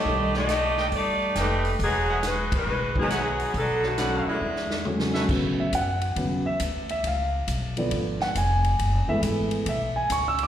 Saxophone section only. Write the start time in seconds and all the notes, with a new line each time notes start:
Already playing: A3 G4 D5 D#5
0.36 A3 G4 D5 D#5
0.95 A3 D#4 G4 D5
1.39 A3 D#4 G4 B4
1.83 F#3 B3 D#4 G#4
2.27 G#3 D#4 F#4 B4
2.56 G#3 D#4 F#4 B4
3.00 F#3 B3 D#4 G#4
3.57 F#3 B3 D4 A4
3.85 D3 A3 B3 F#4
4.28 G#3 B3 D4 E4